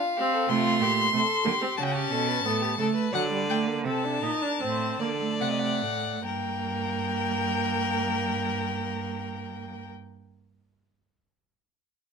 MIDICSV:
0, 0, Header, 1, 5, 480
1, 0, Start_track
1, 0, Key_signature, -2, "minor"
1, 0, Tempo, 648649
1, 362, Time_signature, 4, 2, 24, 8
1, 1812, Tempo, 705053
1, 2772, Tempo, 752823
1, 3252, Tempo, 816327
1, 4212, Tempo, 868307
1, 7464, End_track
2, 0, Start_track
2, 0, Title_t, "Violin"
2, 0, Program_c, 0, 40
2, 0, Note_on_c, 0, 77, 102
2, 359, Note_on_c, 0, 84, 104
2, 370, Note_off_c, 0, 77, 0
2, 1309, Note_off_c, 0, 84, 0
2, 1314, Note_on_c, 0, 81, 88
2, 1367, Note_on_c, 0, 79, 77
2, 1373, Note_off_c, 0, 81, 0
2, 1422, Note_on_c, 0, 81, 105
2, 1433, Note_off_c, 0, 79, 0
2, 2280, Note_off_c, 0, 81, 0
2, 2286, Note_on_c, 0, 78, 96
2, 2340, Note_off_c, 0, 78, 0
2, 2526, Note_on_c, 0, 79, 89
2, 2580, Note_off_c, 0, 79, 0
2, 2778, Note_on_c, 0, 81, 92
2, 3705, Note_off_c, 0, 81, 0
2, 3721, Note_on_c, 0, 78, 84
2, 3768, Note_off_c, 0, 78, 0
2, 3780, Note_on_c, 0, 75, 67
2, 3830, Note_on_c, 0, 78, 84
2, 3839, Note_off_c, 0, 75, 0
2, 4213, Note_off_c, 0, 78, 0
2, 4216, Note_on_c, 0, 79, 92
2, 6229, Note_off_c, 0, 79, 0
2, 7464, End_track
3, 0, Start_track
3, 0, Title_t, "Violin"
3, 0, Program_c, 1, 40
3, 0, Note_on_c, 1, 65, 88
3, 126, Note_on_c, 1, 67, 89
3, 137, Note_off_c, 1, 65, 0
3, 246, Note_on_c, 1, 69, 85
3, 257, Note_off_c, 1, 67, 0
3, 362, Note_off_c, 1, 69, 0
3, 367, Note_on_c, 1, 65, 109
3, 606, Note_on_c, 1, 67, 94
3, 617, Note_off_c, 1, 65, 0
3, 840, Note_off_c, 1, 67, 0
3, 847, Note_on_c, 1, 69, 90
3, 1079, Note_on_c, 1, 67, 90
3, 1090, Note_off_c, 1, 69, 0
3, 1318, Note_on_c, 1, 66, 99
3, 1329, Note_off_c, 1, 67, 0
3, 1443, Note_on_c, 1, 67, 100
3, 1454, Note_off_c, 1, 66, 0
3, 1565, Note_on_c, 1, 69, 92
3, 1576, Note_off_c, 1, 67, 0
3, 1683, Note_on_c, 1, 71, 92
3, 1694, Note_off_c, 1, 69, 0
3, 1808, Note_off_c, 1, 71, 0
3, 1813, Note_on_c, 1, 69, 86
3, 1927, Note_on_c, 1, 67, 94
3, 1937, Note_off_c, 1, 69, 0
3, 2031, Note_off_c, 1, 67, 0
3, 2035, Note_on_c, 1, 69, 95
3, 2148, Note_off_c, 1, 69, 0
3, 2152, Note_on_c, 1, 71, 97
3, 2273, Note_on_c, 1, 74, 93
3, 2283, Note_off_c, 1, 71, 0
3, 2760, Note_off_c, 1, 74, 0
3, 2764, Note_on_c, 1, 69, 84
3, 3000, Note_on_c, 1, 70, 81
3, 3009, Note_off_c, 1, 69, 0
3, 3247, Note_on_c, 1, 72, 92
3, 3256, Note_off_c, 1, 70, 0
3, 3479, Note_on_c, 1, 74, 89
3, 3488, Note_off_c, 1, 72, 0
3, 4207, Note_off_c, 1, 74, 0
3, 4211, Note_on_c, 1, 70, 89
3, 6224, Note_off_c, 1, 70, 0
3, 7464, End_track
4, 0, Start_track
4, 0, Title_t, "Viola"
4, 0, Program_c, 2, 41
4, 135, Note_on_c, 2, 60, 100
4, 364, Note_on_c, 2, 57, 95
4, 375, Note_off_c, 2, 60, 0
4, 828, Note_off_c, 2, 57, 0
4, 833, Note_on_c, 2, 57, 84
4, 892, Note_off_c, 2, 57, 0
4, 1067, Note_on_c, 2, 58, 96
4, 1118, Note_off_c, 2, 58, 0
4, 1193, Note_on_c, 2, 60, 83
4, 1243, Note_off_c, 2, 60, 0
4, 1318, Note_on_c, 2, 61, 93
4, 1814, Note_on_c, 2, 59, 88
4, 1824, Note_off_c, 2, 61, 0
4, 2038, Note_off_c, 2, 59, 0
4, 2042, Note_on_c, 2, 57, 83
4, 2273, Note_off_c, 2, 57, 0
4, 2277, Note_on_c, 2, 54, 92
4, 2392, Note_off_c, 2, 54, 0
4, 2396, Note_on_c, 2, 55, 82
4, 2516, Note_off_c, 2, 55, 0
4, 2520, Note_on_c, 2, 57, 82
4, 2640, Note_on_c, 2, 58, 77
4, 2650, Note_off_c, 2, 57, 0
4, 2767, Note_on_c, 2, 60, 80
4, 2777, Note_off_c, 2, 58, 0
4, 2887, Note_on_c, 2, 62, 84
4, 2896, Note_off_c, 2, 60, 0
4, 3007, Note_on_c, 2, 63, 95
4, 3017, Note_off_c, 2, 62, 0
4, 3126, Note_on_c, 2, 62, 83
4, 3135, Note_off_c, 2, 63, 0
4, 3247, Note_on_c, 2, 60, 86
4, 3257, Note_off_c, 2, 62, 0
4, 3477, Note_off_c, 2, 60, 0
4, 3480, Note_on_c, 2, 58, 86
4, 3527, Note_off_c, 2, 58, 0
4, 3598, Note_on_c, 2, 57, 76
4, 4199, Note_off_c, 2, 57, 0
4, 4209, Note_on_c, 2, 58, 84
4, 6223, Note_off_c, 2, 58, 0
4, 7464, End_track
5, 0, Start_track
5, 0, Title_t, "Cello"
5, 0, Program_c, 3, 42
5, 359, Note_on_c, 3, 48, 93
5, 594, Note_on_c, 3, 46, 85
5, 606, Note_off_c, 3, 48, 0
5, 832, Note_off_c, 3, 46, 0
5, 836, Note_on_c, 3, 48, 85
5, 895, Note_off_c, 3, 48, 0
5, 1079, Note_on_c, 3, 50, 86
5, 1138, Note_off_c, 3, 50, 0
5, 1314, Note_on_c, 3, 49, 91
5, 1557, Note_off_c, 3, 49, 0
5, 1562, Note_on_c, 3, 47, 86
5, 1804, Note_off_c, 3, 47, 0
5, 1809, Note_on_c, 3, 45, 93
5, 2035, Note_off_c, 3, 45, 0
5, 2039, Note_on_c, 3, 49, 82
5, 2094, Note_off_c, 3, 49, 0
5, 2275, Note_on_c, 3, 50, 99
5, 2764, Note_on_c, 3, 48, 86
5, 2774, Note_off_c, 3, 50, 0
5, 2998, Note_off_c, 3, 48, 0
5, 3002, Note_on_c, 3, 46, 77
5, 3053, Note_off_c, 3, 46, 0
5, 3248, Note_on_c, 3, 45, 83
5, 3477, Note_off_c, 3, 45, 0
5, 3483, Note_on_c, 3, 50, 87
5, 3722, Note_on_c, 3, 48, 83
5, 3731, Note_off_c, 3, 50, 0
5, 3964, Note_on_c, 3, 45, 78
5, 3973, Note_off_c, 3, 48, 0
5, 4210, Note_off_c, 3, 45, 0
5, 4213, Note_on_c, 3, 43, 82
5, 6226, Note_off_c, 3, 43, 0
5, 7464, End_track
0, 0, End_of_file